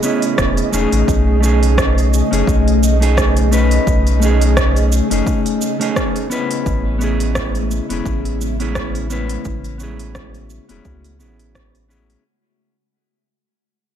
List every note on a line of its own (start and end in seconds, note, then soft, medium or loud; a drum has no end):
0.00 6.63 C#3 medium
0.00 1.05 A3 medium
0.00 0.69 B3 medium
0.00 0.70 C#4 medium
0.00 6.63 G#4 medium
0.00 6.63 D#5 loud
0.00 cabasa medium
0.04 0.70 E4 medium
0.04 0.70 G#4 medium
0.22 open hi-hat soft
0.22 cabasa soft
0.38 0.63 E1 medium
0.38 kick loud
0.38 cross-stick medium
0.38 cabasa soft
0.57 open hi-hat soft
0.57 cabasa soft
0.72 0.86 E1 medium
0.72 1.39 A3 medium
0.72 1.39 C#4 medium
0.72 1.40 D#4 medium
0.72 1.40 G#4 medium
0.72 cabasa medium
0.92 1.03 A1 loud
0.92 open hi-hat medium
0.92 cabasa soft
1.08 2.22 B1 loud
1.08 12.21 A3 medium
1.08 kick loud
1.08 cabasa soft
1.40 2.26 A3 medium
1.40 2.27 C#4 medium
1.40 2.28 D#4 medium
1.40 cabasa medium
1.46 2.29 G#4 medium
1.63 open hi-hat medium
1.63 cabasa soft
1.78 kick loud
1.78 cross-stick loud
1.78 cabasa soft
1.98 open hi-hat soft
1.98 cabasa soft
2.14 cabasa medium
2.31 2.43 F#1 medium
2.31 2.97 A3 medium
2.31 2.97 C#4 medium
2.31 2.98 D#4 medium
2.31 2.98 G#4 medium
2.31 open hi-hat medium
2.31 cabasa soft
2.47 3.79 B1 medium
2.47 kick loud
2.47 cabasa soft
2.68 open hi-hat soft
2.83 cabasa medium
3.00 3.48 A3 medium
3.00 3.49 C#4 medium
3.00 3.49 D#4 medium
3.00 3.49 G#4 medium
3.00 open hi-hat medium
3.00 cabasa soft
3.17 kick loud
3.17 cross-stick medium
3.17 cabasa soft
3.37 open hi-hat soft
3.37 cabasa soft
3.51 4.18 A3 medium
3.51 4.18 C#4 medium
3.51 4.19 D#4 medium
3.51 4.19 B4 medium
3.51 cabasa medium
3.71 open hi-hat soft
3.71 cabasa soft
3.87 5.01 B1 medium
3.87 kick loud
3.87 cabasa soft
4.07 open hi-hat soft
4.07 cabasa soft
4.20 5.06 A3 medium
4.20 5.06 C#4 medium
4.20 5.07 D#4 medium
4.20 cabasa medium
4.25 5.08 G#4 medium
4.41 open hi-hat medium
4.41 cabasa soft
4.57 kick medium
4.57 cross-stick loud
4.57 cabasa soft
4.76 open hi-hat soft
4.76 cabasa soft
4.92 cabasa medium
5.10 5.22 F#1 medium
5.10 5.76 A3 medium
5.10 5.76 C#4 medium
5.10 5.77 D#4 medium
5.10 5.77 G#4 medium
5.10 open hi-hat medium
5.10 cabasa soft
5.27 kick loud
5.27 cabasa soft
5.46 open hi-hat soft
5.46 cabasa soft
5.61 cabasa medium
5.80 6.27 A3 medium
5.80 6.28 C#4 medium
5.80 6.28 D#4 medium
5.80 6.28 G#4 loud
5.80 open hi-hat medium
5.80 cabasa soft
5.96 kick loud
5.96 cross-stick medium
5.96 cabasa soft
6.16 open hi-hat soft
6.16 cabasa soft
6.30 6.97 B3 medium
6.30 6.97 C#4 medium
6.30 6.98 E4 medium
6.30 6.98 B4 medium
6.30 cabasa medium
6.51 open hi-hat medium
6.51 cabasa soft
6.66 7.80 A1 loud
6.66 12.21 C#3 medium
6.66 12.21 G#3 medium
6.66 9.43 E4 medium
6.66 kick loud
6.66 cabasa soft
6.99 7.85 B3 medium
6.99 7.85 C#4 medium
6.99 7.86 E4 medium
6.99 cabasa medium
7.04 7.87 G#4 loud
7.20 open hi-hat medium
7.20 cabasa soft
7.35 kick loud
7.35 cross-stick loud
7.35 cabasa soft
7.55 open hi-hat soft
7.55 cabasa soft
7.71 cabasa medium
7.89 8.01 E1 medium
7.89 8.55 B3 medium
7.89 8.56 C#4 medium
7.89 8.56 E4 medium
7.89 8.56 G#4 medium
7.89 open hi-hat medium
7.89 cabasa soft
8.06 9.37 A1 medium
8.06 kick loud
8.06 cabasa soft
8.25 open hi-hat soft
8.41 cabasa medium
8.60 9.07 B3 medium
8.60 9.07 C#4 medium
8.60 9.07 E4 medium
8.60 9.08 G#4 loud
8.60 open hi-hat medium
8.60 cabasa soft
8.75 kick loud
8.75 cross-stick loud
8.75 cabasa soft
8.95 open hi-hat soft
8.95 cabasa soft
9.10 9.76 B3 medium
9.10 9.77 C#4 medium
9.10 9.77 E4 medium
9.10 9.78 B4 loud
9.10 cabasa medium
9.29 open hi-hat medium
9.29 cabasa soft
9.45 10.59 A1 loud
9.45 12.22 F#4 loud
9.45 kick loud
9.45 cabasa soft
9.64 open hi-hat soft
9.64 cabasa soft
9.78 10.64 B3 medium
9.78 10.65 C#4 medium
9.78 10.66 E4 medium
9.78 cabasa medium
9.83 10.66 G#4 loud
9.99 open hi-hat medium
9.99 cabasa soft
10.15 kick loud
10.15 cross-stick loud
10.15 cabasa soft
10.34 open hi-hat soft
10.34 cabasa soft
10.50 cabasa medium
10.69 10.80 E1 medium
10.69 11.17 B3 medium
10.69 11.17 C#4 medium
10.69 11.17 E4 medium
10.69 11.18 G#4 medium
10.69 open hi-hat medium
10.69 cabasa soft
10.85 11.21 C#2 medium
10.85 kick loud
10.85 cabasa soft
11.04 open hi-hat soft
11.04 cabasa soft
11.19 12.16 A1 medium
11.19 11.86 B3 medium
11.19 11.86 C#4 medium
11.19 11.86 E4 medium
11.19 11.87 G#4 medium
11.19 cabasa medium
11.39 open hi-hat medium
11.39 cabasa soft
11.55 kick loud
11.55 cross-stick loud
11.55 cabasa soft
11.75 open hi-hat soft
11.75 cabasa soft
11.88 12.22 B3 medium
11.88 12.23 C#4 medium
11.88 12.23 E4 medium
11.88 12.24 G#4 loud
11.88 cabasa medium
12.10 open hi-hat medium
12.10 cabasa soft